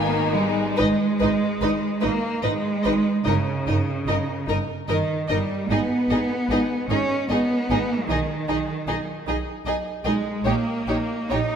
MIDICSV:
0, 0, Header, 1, 6, 480
1, 0, Start_track
1, 0, Key_signature, 5, "minor"
1, 0, Tempo, 884956
1, 429, Time_signature, 3, 2, 24, 8
1, 429, Tempo, 820793
1, 2349, Tempo, 805369
1, 4269, Tempo, 788436
1, 6189, Tempo, 843882
1, 6819, End_track
2, 0, Start_track
2, 0, Title_t, "Violin section"
2, 0, Program_c, 0, 48
2, 0, Note_on_c, 0, 80, 66
2, 191, Note_off_c, 0, 80, 0
2, 425, Note_on_c, 0, 75, 66
2, 472, Note_off_c, 0, 75, 0
2, 679, Note_on_c, 0, 75, 53
2, 726, Note_off_c, 0, 75, 0
2, 915, Note_on_c, 0, 75, 58
2, 962, Note_off_c, 0, 75, 0
2, 1149, Note_on_c, 0, 75, 54
2, 1196, Note_off_c, 0, 75, 0
2, 1386, Note_on_c, 0, 75, 64
2, 1433, Note_off_c, 0, 75, 0
2, 1625, Note_on_c, 0, 75, 58
2, 1672, Note_off_c, 0, 75, 0
2, 1862, Note_on_c, 0, 75, 60
2, 1909, Note_off_c, 0, 75, 0
2, 2111, Note_on_c, 0, 75, 56
2, 2158, Note_off_c, 0, 75, 0
2, 2350, Note_on_c, 0, 75, 58
2, 2398, Note_off_c, 0, 75, 0
2, 2594, Note_on_c, 0, 75, 48
2, 2642, Note_off_c, 0, 75, 0
2, 2829, Note_on_c, 0, 75, 62
2, 2876, Note_off_c, 0, 75, 0
2, 3069, Note_on_c, 0, 75, 62
2, 3117, Note_off_c, 0, 75, 0
2, 3318, Note_on_c, 0, 75, 55
2, 3365, Note_off_c, 0, 75, 0
2, 3552, Note_on_c, 0, 75, 49
2, 3600, Note_off_c, 0, 75, 0
2, 3800, Note_on_c, 0, 75, 58
2, 3847, Note_off_c, 0, 75, 0
2, 4031, Note_on_c, 0, 75, 52
2, 4079, Note_off_c, 0, 75, 0
2, 4267, Note_on_c, 0, 75, 59
2, 4315, Note_off_c, 0, 75, 0
2, 4515, Note_on_c, 0, 75, 54
2, 4564, Note_off_c, 0, 75, 0
2, 4754, Note_on_c, 0, 75, 57
2, 4803, Note_off_c, 0, 75, 0
2, 4995, Note_on_c, 0, 75, 49
2, 5044, Note_off_c, 0, 75, 0
2, 5237, Note_on_c, 0, 75, 54
2, 5285, Note_off_c, 0, 75, 0
2, 5476, Note_on_c, 0, 75, 50
2, 5524, Note_off_c, 0, 75, 0
2, 5706, Note_on_c, 0, 75, 61
2, 5755, Note_off_c, 0, 75, 0
2, 5940, Note_on_c, 0, 75, 56
2, 5989, Note_off_c, 0, 75, 0
2, 6184, Note_on_c, 0, 73, 63
2, 6230, Note_off_c, 0, 73, 0
2, 6433, Note_on_c, 0, 73, 57
2, 6479, Note_off_c, 0, 73, 0
2, 6670, Note_on_c, 0, 73, 57
2, 6716, Note_off_c, 0, 73, 0
2, 6819, End_track
3, 0, Start_track
3, 0, Title_t, "Violin section"
3, 0, Program_c, 1, 48
3, 0, Note_on_c, 1, 58, 67
3, 183, Note_on_c, 1, 56, 61
3, 186, Note_off_c, 1, 58, 0
3, 418, Note_on_c, 1, 71, 64
3, 425, Note_off_c, 1, 56, 0
3, 464, Note_off_c, 1, 71, 0
3, 665, Note_on_c, 1, 71, 51
3, 712, Note_off_c, 1, 71, 0
3, 909, Note_on_c, 1, 71, 64
3, 956, Note_off_c, 1, 71, 0
3, 1143, Note_on_c, 1, 71, 54
3, 1190, Note_off_c, 1, 71, 0
3, 1387, Note_on_c, 1, 71, 54
3, 1434, Note_off_c, 1, 71, 0
3, 1632, Note_on_c, 1, 71, 59
3, 1678, Note_off_c, 1, 71, 0
3, 1878, Note_on_c, 1, 70, 64
3, 1925, Note_off_c, 1, 70, 0
3, 2123, Note_on_c, 1, 70, 47
3, 2170, Note_off_c, 1, 70, 0
3, 2357, Note_on_c, 1, 70, 56
3, 2405, Note_off_c, 1, 70, 0
3, 2597, Note_on_c, 1, 70, 60
3, 2645, Note_off_c, 1, 70, 0
3, 2839, Note_on_c, 1, 70, 57
3, 2887, Note_off_c, 1, 70, 0
3, 3083, Note_on_c, 1, 70, 50
3, 3131, Note_off_c, 1, 70, 0
3, 3325, Note_on_c, 1, 68, 55
3, 3372, Note_off_c, 1, 68, 0
3, 3559, Note_on_c, 1, 68, 54
3, 3607, Note_off_c, 1, 68, 0
3, 3799, Note_on_c, 1, 68, 53
3, 3847, Note_off_c, 1, 68, 0
3, 4037, Note_on_c, 1, 68, 53
3, 4084, Note_off_c, 1, 68, 0
3, 4273, Note_on_c, 1, 68, 53
3, 4321, Note_off_c, 1, 68, 0
3, 4519, Note_on_c, 1, 68, 50
3, 4567, Note_off_c, 1, 68, 0
3, 4759, Note_on_c, 1, 68, 57
3, 4808, Note_off_c, 1, 68, 0
3, 4997, Note_on_c, 1, 68, 49
3, 5046, Note_off_c, 1, 68, 0
3, 5231, Note_on_c, 1, 68, 51
3, 5280, Note_off_c, 1, 68, 0
3, 5481, Note_on_c, 1, 68, 50
3, 5530, Note_off_c, 1, 68, 0
3, 5715, Note_on_c, 1, 68, 58
3, 5764, Note_off_c, 1, 68, 0
3, 5951, Note_on_c, 1, 68, 54
3, 5999, Note_off_c, 1, 68, 0
3, 6195, Note_on_c, 1, 67, 56
3, 6240, Note_off_c, 1, 67, 0
3, 6432, Note_on_c, 1, 67, 48
3, 6477, Note_off_c, 1, 67, 0
3, 6679, Note_on_c, 1, 67, 57
3, 6724, Note_off_c, 1, 67, 0
3, 6819, End_track
4, 0, Start_track
4, 0, Title_t, "Viola section"
4, 0, Program_c, 2, 48
4, 0, Note_on_c, 2, 59, 57
4, 0, Note_on_c, 2, 63, 56
4, 296, Note_off_c, 2, 63, 0
4, 319, Note_off_c, 2, 59, 0
4, 423, Note_on_c, 2, 63, 60
4, 470, Note_off_c, 2, 63, 0
4, 676, Note_on_c, 2, 63, 60
4, 723, Note_off_c, 2, 63, 0
4, 921, Note_on_c, 2, 63, 61
4, 967, Note_off_c, 2, 63, 0
4, 1148, Note_on_c, 2, 63, 60
4, 1195, Note_off_c, 2, 63, 0
4, 1395, Note_on_c, 2, 63, 59
4, 1442, Note_off_c, 2, 63, 0
4, 1634, Note_on_c, 2, 63, 58
4, 1681, Note_off_c, 2, 63, 0
4, 1870, Note_on_c, 2, 63, 60
4, 1917, Note_off_c, 2, 63, 0
4, 2111, Note_on_c, 2, 63, 52
4, 2157, Note_off_c, 2, 63, 0
4, 2345, Note_on_c, 2, 63, 60
4, 2392, Note_off_c, 2, 63, 0
4, 2591, Note_on_c, 2, 63, 52
4, 2638, Note_off_c, 2, 63, 0
4, 2836, Note_on_c, 2, 63, 56
4, 2883, Note_off_c, 2, 63, 0
4, 3078, Note_on_c, 2, 63, 53
4, 3126, Note_off_c, 2, 63, 0
4, 3321, Note_on_c, 2, 63, 57
4, 3369, Note_off_c, 2, 63, 0
4, 3571, Note_on_c, 2, 63, 46
4, 3618, Note_off_c, 2, 63, 0
4, 3803, Note_on_c, 2, 63, 56
4, 3851, Note_off_c, 2, 63, 0
4, 4039, Note_on_c, 2, 63, 52
4, 4087, Note_off_c, 2, 63, 0
4, 4278, Note_on_c, 2, 63, 48
4, 4327, Note_off_c, 2, 63, 0
4, 4517, Note_on_c, 2, 63, 53
4, 4566, Note_off_c, 2, 63, 0
4, 4751, Note_on_c, 2, 63, 58
4, 4799, Note_off_c, 2, 63, 0
4, 4987, Note_on_c, 2, 63, 53
4, 5035, Note_off_c, 2, 63, 0
4, 5234, Note_on_c, 2, 63, 58
4, 5283, Note_off_c, 2, 63, 0
4, 5471, Note_on_c, 2, 63, 52
4, 5519, Note_off_c, 2, 63, 0
4, 5709, Note_on_c, 2, 63, 54
4, 5757, Note_off_c, 2, 63, 0
4, 5953, Note_on_c, 2, 63, 52
4, 6002, Note_off_c, 2, 63, 0
4, 6199, Note_on_c, 2, 63, 51
4, 6244, Note_off_c, 2, 63, 0
4, 6436, Note_on_c, 2, 63, 52
4, 6482, Note_off_c, 2, 63, 0
4, 6680, Note_on_c, 2, 63, 59
4, 6726, Note_off_c, 2, 63, 0
4, 6819, End_track
5, 0, Start_track
5, 0, Title_t, "Cello section"
5, 0, Program_c, 3, 48
5, 0, Note_on_c, 3, 51, 84
5, 174, Note_off_c, 3, 51, 0
5, 186, Note_on_c, 3, 55, 80
5, 426, Note_off_c, 3, 55, 0
5, 426, Note_on_c, 3, 56, 97
5, 1149, Note_off_c, 3, 56, 0
5, 1150, Note_on_c, 3, 58, 84
5, 1389, Note_off_c, 3, 58, 0
5, 1390, Note_on_c, 3, 56, 96
5, 1873, Note_off_c, 3, 56, 0
5, 1875, Note_on_c, 3, 49, 78
5, 2578, Note_off_c, 3, 49, 0
5, 2831, Note_on_c, 3, 51, 81
5, 3056, Note_off_c, 3, 51, 0
5, 3079, Note_on_c, 3, 55, 76
5, 3318, Note_off_c, 3, 55, 0
5, 3321, Note_on_c, 3, 59, 85
5, 4034, Note_on_c, 3, 61, 85
5, 4035, Note_off_c, 3, 59, 0
5, 4266, Note_off_c, 3, 61, 0
5, 4266, Note_on_c, 3, 59, 91
5, 4739, Note_off_c, 3, 59, 0
5, 4749, Note_on_c, 3, 51, 77
5, 5469, Note_off_c, 3, 51, 0
5, 5937, Note_on_c, 3, 56, 81
5, 6168, Note_off_c, 3, 56, 0
5, 6182, Note_on_c, 3, 58, 79
5, 6664, Note_on_c, 3, 63, 81
5, 6671, Note_off_c, 3, 58, 0
5, 6819, Note_off_c, 3, 63, 0
5, 6819, End_track
6, 0, Start_track
6, 0, Title_t, "Double bass section"
6, 0, Program_c, 4, 48
6, 0, Note_on_c, 4, 32, 65
6, 319, Note_off_c, 4, 32, 0
6, 437, Note_on_c, 4, 32, 74
6, 484, Note_off_c, 4, 32, 0
6, 678, Note_on_c, 4, 32, 59
6, 725, Note_off_c, 4, 32, 0
6, 915, Note_on_c, 4, 32, 63
6, 962, Note_off_c, 4, 32, 0
6, 1158, Note_on_c, 4, 32, 67
6, 1205, Note_off_c, 4, 32, 0
6, 1389, Note_on_c, 4, 32, 64
6, 1436, Note_off_c, 4, 32, 0
6, 1634, Note_on_c, 4, 32, 66
6, 1681, Note_off_c, 4, 32, 0
6, 1875, Note_on_c, 4, 31, 71
6, 1922, Note_off_c, 4, 31, 0
6, 2111, Note_on_c, 4, 31, 65
6, 2158, Note_off_c, 4, 31, 0
6, 2350, Note_on_c, 4, 31, 65
6, 2398, Note_off_c, 4, 31, 0
6, 2594, Note_on_c, 4, 31, 64
6, 2641, Note_off_c, 4, 31, 0
6, 2833, Note_on_c, 4, 31, 58
6, 2881, Note_off_c, 4, 31, 0
6, 3083, Note_on_c, 4, 31, 65
6, 3131, Note_off_c, 4, 31, 0
6, 3318, Note_on_c, 4, 32, 72
6, 3366, Note_off_c, 4, 32, 0
6, 3559, Note_on_c, 4, 32, 65
6, 3606, Note_off_c, 4, 32, 0
6, 3795, Note_on_c, 4, 32, 59
6, 3842, Note_off_c, 4, 32, 0
6, 4036, Note_on_c, 4, 32, 61
6, 4083, Note_off_c, 4, 32, 0
6, 4269, Note_on_c, 4, 32, 64
6, 4318, Note_off_c, 4, 32, 0
6, 4513, Note_on_c, 4, 32, 64
6, 4562, Note_off_c, 4, 32, 0
6, 4752, Note_on_c, 4, 35, 64
6, 4801, Note_off_c, 4, 35, 0
6, 4995, Note_on_c, 4, 35, 56
6, 5043, Note_off_c, 4, 35, 0
6, 5230, Note_on_c, 4, 35, 59
6, 5278, Note_off_c, 4, 35, 0
6, 5472, Note_on_c, 4, 35, 61
6, 5521, Note_off_c, 4, 35, 0
6, 5707, Note_on_c, 4, 35, 61
6, 5756, Note_off_c, 4, 35, 0
6, 5946, Note_on_c, 4, 35, 66
6, 5995, Note_off_c, 4, 35, 0
6, 6191, Note_on_c, 4, 34, 64
6, 6236, Note_off_c, 4, 34, 0
6, 6429, Note_on_c, 4, 34, 59
6, 6475, Note_off_c, 4, 34, 0
6, 6676, Note_on_c, 4, 34, 61
6, 6721, Note_off_c, 4, 34, 0
6, 6819, End_track
0, 0, End_of_file